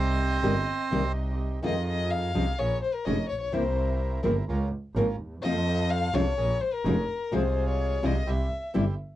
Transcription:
Already playing: C2 C4 D#4 G4 C5 D#5
0.42 G1 C3 D#3 G3 C4 D#4 G4
0.91 C2 C3 D#3 G3 C4 D#4 G4
1.62 F2 C3 D#3 G#3 C4 D#4 F4 G#4 D#5
1.87 D#5
2.11 F5
2.34 C2 F3 G#3 C#4 D#4 F4 G#4
2.58 A#1 C#4 G#4 A#4 C#5
2.82 C5
2.94 A#4
3.05 F1 F3 G#3 C#4 F4 G#4 A#4 D#5
3.29 A#1 C#5
3.41 C#5
3.52 C2 C3 E3 A#3 C4 E4 A#4 C5
4.23 G1 C#3 F3 A#3 C4 E4 F4 A#4
4.48 C#2 C#4 F4 A#4
4.95 G#1 C#3 F3 A#3 C#4 F4 A#4
5.19 D#2
5.42 F2 C3 F3 A3 C4 F4 A4 D#5
5.90 F5
6.13 C2 F3 G#3 C4 C#4 F4 A4 C#5
6.37 A#1 C#4 G#4 A#4
6.61 C5
6.73 A#4
6.84 F1 F3 G#3 C#4 F4 G#4 A#4
7.32 C2 C3 F3 G#3 C4 F4 G#4 C5
7.68 C#5
8.03 C2 C3 E3 G3 C4 E4 F4 G#4 D#5
8.26 C2 C4 E4 G4 E5
8.74 G1 C3 E3 G3 C4 E4 G4

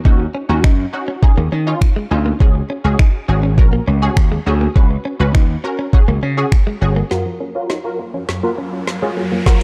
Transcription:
0.05 D#2 C#4 D#4 F#4, kick
0.20 muted clean electric guitar stroke
0.35 C#4
0.49 D#2 C#4 D#4 F#4
0.64 F#2 D#4, finger snap, kick
0.93 C#4 D#4 F#4, muted clean electric guitar stroke
1.08 C#4
1.22 C#4 D#4 G#4, muted clean electric guitar stroke, kick
1.37 D#2 A#3
1.52 D#3 C#4
1.67 C#4 D#4 F4
1.81 finger snap, kick
1.96 G#3
2.11 D2 C#4 D#4 F4, muted clean electric guitar stroke
2.26 A#3
2.40 C#2 C#4 F#4 G#4, kick
2.55 muted clean electric guitar stroke
2.70 C#4
2.84 C#2 C#4 F#4 G#4
2.99 D#4, finger snap, kick
3.28 G#1 C#4 F#4 G#4, muted clean electric guitar stroke
3.43 C#4
3.58 A#1 C#4 F#4 A#4, muted clean electric guitar stroke, kick
3.73 A#3
3.88 C#2 C#4
4.02 C#4 F#4 G#4
4.17 D#2, finger snap, kick
4.32 G#3
4.46 D2 C#4 F#4 G#4, muted clean electric guitar stroke
4.61 A#3
4.75 C#2 C#4 F#4 B4, kick
4.91 muted clean electric guitar stroke
5.05 C#4
5.20 C#2 C#4 F#4 B4
5.35 D#2 D#4, finger snap, kick
5.64 C#4 F#4 A#4, muted clean electric guitar stroke
5.79 C#4
5.93 C#4 F#4 G#4, muted clean electric guitar stroke, kick
6.08 C#2 A#3
6.23 C#3 C#4
6.37 C#4 F#4 G#4
6.52 finger snap, kick
6.67 G#3
6.81 G1 C#4 F#4 G#4, muted clean electric guitar stroke
6.96 A#3
7.11 F#2 F#3 F4 F#4 A#4 F5, snare, riser
7.26 F3, muted clean electric guitar stroke
7.40 A#3 C#4
7.55 C#4 F4 F#4 A#4
7.70 D#4, snare
7.84 F4 F#4 A#4
7.99 A#3, muted clean electric guitar stroke
8.14 F3 C#4
8.29 F#2, muted clean electric guitar stroke, snare
8.43 F3 A#3 F4 F#4 A#4
8.58 C#4
8.73 C#4
8.87 snare
9.02 G#3 C#4 F4 F#4 G#4
9.17 A#3, muted clean electric guitar stroke
9.32 F3 A#3
9.46 F#2 D#4 F4 F#4 A#4, kick, snare

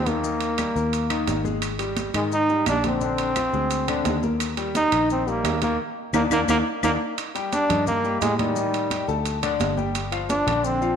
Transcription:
Already playing: D#2
0.06 D#3 A#3 D#4, high conga, high timbale, maracas
0.23 D#3 D#4, high conga, maracas
0.41 high conga, high timbale, maracas
0.58 G3 G4, high conga, high timbale, low timbale, claves, maracas
0.75 D#2 A#3 A#4, high conga, maracas
0.93 high conga, high timbale, maracas
1.10 D#3 D#4, high conga, high timbale, claves, maracas
1.27 G#1, high conga, high timbale, low timbale, maracas
1.44 G#3 G#4, high conga, maracas
1.62 high conga, high timbale, claves, maracas
1.79 G3 G4, high conga, high timbale, maracas
1.97 high conga, high timbale, low timbale, maracas
2.14 G#2 D#3 G#3 D#4, high conga, high timbale, claves, maracas
2.32 D#4, high conga, maracas
2.49 G3 G4, high conga, maracas
2.66 A#1 D4, high conga, high timbale, low timbale, claves, maracas
2.84 D3 C4 D4, high conga, high timbale, maracas
3.01 D3 D4, high conga, maracas
3.18 high conga, high timbale, maracas
3.36 F3 F4, high conga, high timbale, low timbale, claves, maracas
3.53 D2 G#3 G#4, maracas
3.71 high conga, high timbale, maracas
3.88 D3 D4, high conga, high timbale, claves, maracas
4.05 D#2, high conga, high timbale, low timbale, maracas
4.23 A#3 A#4, high conga, maracas
4.40 high conga, high timbale, claves, maracas
4.57 G3 G4, high conga, high timbale, maracas
4.75 D#4, high conga, high timbale, low timbale, maracas
4.92 A#1 D#3 D#4, high timbale, claves, maracas
5.10 C4, high conga, maracas
5.27 G3 A#3 G4, high conga, maracas
5.44 D#2, high conga, high timbale, low timbale, claves, maracas
5.62 D#3 A#3 D#4, high conga, high timbale, maracas
6.13 D#2 A#3 D4 D#4, high conga, high timbale, claves, maracas
6.30 D#2 A#3 D4 D#4, high conga, high timbale, claves, maracas
6.48 D#2 A#3 D4 D#4, high conga, high timbale, claves, maracas
6.83 D#2 A#3 D4 D#4, high conga, high timbale, claves, maracas
7.18 high conga, high timbale, maracas
7.35 G3 G4 G5, high conga, high timbale, maracas
7.53 D4, high conga, high timbale, low timbale, maracas
7.69 G2 D#3 D#4 D#5, high conga, low conga, high timbale, maracas
7.87 A#3, high conga, low conga, maracas
8.04 G3 G4 G5, high conga, maracas
8.21 A2 G#3, high conga, high timbale, low timbale, maracas
8.39 D#3 G3 D#4 D#5, high conga, high timbale, maracas
8.56 D#3 D#4 D#5, maracas
8.73 high conga, high timbale, maracas
8.90 G3 G4 G5, high conga, high timbale, low timbale, maracas
9.07 D2 A3 A4 A5, high conga, maracas
9.25 high conga, high timbale, maracas
9.42 D3 D4 D5, high conga, high timbale, maracas
9.60 G1, high conga, high timbale, low timbale, maracas
9.77 G3 G4 G5, high conga, maracas
9.95 high conga, high timbale, maracas
10.12 F3 F4 F5, high conga, high timbale, maracas
10.30 D4, high conga, high timbale, low timbale, maracas
10.47 A#1 D3 D4 D5, high conga, low conga, high timbale, maracas
10.64 C4, high conga, maracas
10.81 F3 F4 F5, high conga, maracas

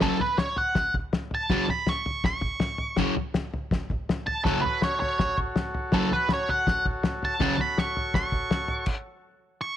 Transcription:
0.00 F#2 C#3 F#3 A4, kick, snare, floor tom
0.20 B4, floor tom
0.38 C#5, snare, floor tom
0.57 F#5, floor tom
0.75 kick, snare, floor tom
0.94 kick, floor tom
1.13 snare, floor tom
1.31 A5, floor tom
1.50 F#2 C#3 F#3, kick, snare, floor tom
1.69 B5, floor tom
1.87 C#6, snare, floor tom
2.06 floor tom
2.24 C#6, kick, snare, floor tom
2.41 kick, floor tom
2.60 snare, floor tom
2.78 floor tom
2.96 F#2 C#3 F#3, kick, snare, floor tom
3.16 floor tom
3.34 snare, floor tom
3.54 floor tom
3.71 kick, snare, floor tom
3.90 kick, floor tom
4.09 snare, floor tom
4.27 A5, floor tom
4.44 F#2 C#3 F#3 F#4 A4 C#5, kick, snare, floor tom
4.62 B4, floor tom
4.82 C#5, snare, floor tom
5.00 C#5, floor tom
5.19 kick, snare, floor tom
5.38 kick, floor tom
5.56 snare, floor tom
5.74 floor tom
5.92 F#2 C#3 F#3 A4, kick, snare, floor tom
6.11 B4, floor tom
6.29 snare, floor tom
6.33 C#5
6.49 F#5, floor tom
6.67 kick, snare, floor tom
6.86 kick, floor tom
7.03 snare, floor tom
7.23 A5, floor tom
7.40 F#2 C#3 F#3 F#4 A4 C#5, kick, snare, floor tom
7.58 B5, floor tom
7.78 C#6, snare, floor tom
7.97 floor tom
8.14 C#6, kick, snare, floor tom
8.32 kick, floor tom
8.51 snare, floor tom
8.68 floor tom
8.86 kick, crash
9.61 C#6

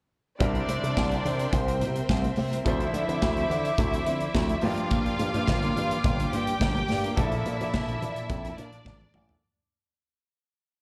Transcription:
0.39 C2 G3 C4 D4 E4 A#4 D5 E5 G5 C6, kick, closed hi-hat
0.55 muted clean electric guitar stroke, closed hi-hat
0.68 C3, muted clean electric guitar stroke, closed hi-hat, muted conga
0.83 C3 G3 C4 E4 C5, closed hi-hat
0.97 C2, kick, snare, high conga
1.11 G3 C4 E4 A#4, closed hi-hat
1.25 C3, muted clean electric guitar stroke, closed hi-hat, low conga
1.39 muted clean electric guitar stroke, closed hi-hat
1.53 C2 C4 C5, kick, closed hi-hat, muted conga
1.68 G3 C4 E4 C5, closed hi-hat
1.81 C3 G3 C4 E4 C5, closed hi-hat, muted conga
1.96 muted clean electric guitar stroke, closed hi-hat
2.09 C2 G3 C4 E4 C5, kick, snare, high conga
2.24 muted clean electric guitar stroke, closed hi-hat, high conga
2.36 C3, muted clean electric guitar stroke, open hi-hat, high conga
2.51 G3 C4 E4 A#4, closed hi-hat
2.65 D2 F3 C4 D4 E4 A4 C5 D5 E5 D6, kick, closed hi-hat
2.80 muted clean electric guitar stroke, closed hi-hat
2.93 D3, muted clean electric guitar stroke, closed hi-hat, muted conga
3.07 D3 F3 C4 E4 C5, closed hi-hat
3.22 D2, kick, snare, high conga
3.35 F3 C4 E4 A4, closed hi-hat
3.49 D3, muted clean electric guitar stroke, closed hi-hat, low conga
3.64 muted clean electric guitar stroke, closed hi-hat
3.78 D2, kick, closed hi-hat, muted conga
3.93 F3 C4 E4 C5, closed hi-hat
4.06 D3 F3 C4 E4 C5, closed hi-hat, muted conga
4.20 muted clean electric guitar stroke, closed hi-hat
4.34 D2 F3 C4 E4 C5, kick, snare, high conga
4.49 muted clean electric guitar stroke, closed hi-hat, high conga
4.61 G2 F3 A#3 D4 F4 G4 F5 G5 D6, open hi-hat, high conga
4.76 A#3 D4 F4 A#4, closed hi-hat
4.91 A#3 D4 F4 A#4, kick, closed hi-hat
5.05 muted clean electric guitar stroke, closed hi-hat
5.19 G2, muted clean electric guitar stroke, closed hi-hat, muted conga
5.34 G2 A#3 D4 F4 C5, closed hi-hat
5.47 G1, kick, snare, high conga
5.62 A#3 D4 F4 A#4, closed hi-hat
5.76 G2, closed hi-hat, low conga
5.91 muted clean electric guitar stroke, closed hi-hat
6.04 G1, muted clean electric guitar stroke, kick, closed hi-hat, muted conga
6.20 A#3 D4 F4 C5, closed hi-hat
6.32 G2 A#3 D4 F4 G4 C5 G5, closed hi-hat
6.47 muted clean electric guitar stroke, closed hi-hat
6.60 G1 A#3 D4 F4 C5, kick, snare, high conga
6.76 muted clean electric guitar stroke, closed hi-hat, high conga
6.88 G2, muted clean electric guitar stroke, snare, open hi-hat, high conga
7.04 A#3 D4 F4 A#4, closed hi-hat
7.16 A#1 F3 A#3 D4 E4 A4 D5 E5 A5, kick, closed hi-hat
7.32 muted clean electric guitar stroke, closed hi-hat
7.45 A#2, muted clean electric guitar stroke, closed hi-hat, muted conga
7.60 A#2 F3 A#3 D4 A#4, closed hi-hat
7.74 A#1, kick, snare, high conga
7.89 F3 A#3 D4 A4, closed hi-hat
8.01 A#2, muted clean electric guitar stroke, closed hi-hat, low conga
8.16 muted clean electric guitar stroke, closed hi-hat
8.30 F2, kick, closed hi-hat, muted conga
8.44 F3 A#3 D4 A#4, closed hi-hat
8.57 A#2 F3 A#3 D4 A#4 D5, closed hi-hat, muted conga
8.73 muted clean electric guitar stroke, closed hi-hat
8.85 G#1 F3 A#3 D4 A#4, kick, snare, high conga
9.00 muted clean electric guitar stroke, high tom
9.14 A1, muted clean electric guitar stroke, mid tom, high conga
9.29 F3 A#3 D4 A4, floor tom

